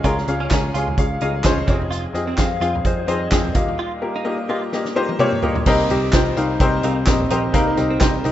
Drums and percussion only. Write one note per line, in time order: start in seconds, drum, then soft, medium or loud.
0.04 kick medium
0.04 closed hi-hat medium
0.04 tambourine soft
0.18 snare soft
0.27 closed hi-hat medium
0.27 tambourine soft
0.50 kick medium
0.50 snare loud
0.50 clap medium
0.50 closed hi-hat medium
0.50 tambourine medium
0.75 closed hi-hat medium
0.75 tambourine soft
0.87 floor tom medium
0.98 kick loud
0.98 closed hi-hat medium
1.21 closed hi-hat medium
1.44 kick medium
1.44 snare loud
1.44 clap medium
1.44 closed hi-hat medium
1.44 tambourine medium
1.58 floor tom medium
1.67 kick loud
1.67 closed hi-hat medium
1.67 tambourine soft
1.81 floor tom medium
1.92 closed hi-hat medium
1.92 tambourine soft
2.15 closed hi-hat medium
2.15 tambourine soft
2.37 kick loud
2.37 snare medium
2.37 clap medium
2.37 closed hi-hat medium
2.37 tambourine medium
2.62 closed hi-hat medium
2.62 tambourine soft
2.75 floor tom medium
2.85 kick medium
2.85 closed hi-hat medium
2.85 tambourine soft
3.08 closed hi-hat medium
3.31 kick loud
3.31 snare loud
3.31 clap medium
3.31 closed hi-hat medium
3.31 tambourine medium
3.45 floor tom medium
3.54 kick loud
3.54 closed hi-hat medium
3.54 tambourine soft
3.68 floor tom medium
4.72 snare medium
4.85 snare medium
5.09 high tom medium
5.19 mid tom medium
5.32 mid tom medium
5.42 floor tom medium
5.55 floor tom medium
5.66 kick loud
5.66 crash medium
5.66 tambourine medium
5.90 closed hi-hat medium
5.90 floor tom medium
5.90 tambourine soft
6.12 kick loud
6.12 snare loud
6.12 clap medium
6.12 closed hi-hat medium
6.12 tambourine medium
6.37 closed hi-hat medium
6.37 tambourine soft
6.60 kick loud
6.60 closed hi-hat medium
6.60 tambourine soft
6.83 closed hi-hat medium
7.06 kick loud
7.06 snare loud
7.06 clap medium
7.06 closed hi-hat medium
7.06 tambourine medium
7.20 floor tom medium
7.30 closed hi-hat medium
7.30 tambourine soft
7.54 kick loud
7.54 closed hi-hat medium
7.54 tambourine medium
7.77 closed hi-hat medium
7.77 floor tom soft
7.77 tambourine soft
8.00 kick loud
8.00 snare loud
8.00 clap medium
8.00 closed hi-hat medium
8.00 tambourine medium
8.24 closed hi-hat medium
8.24 tambourine soft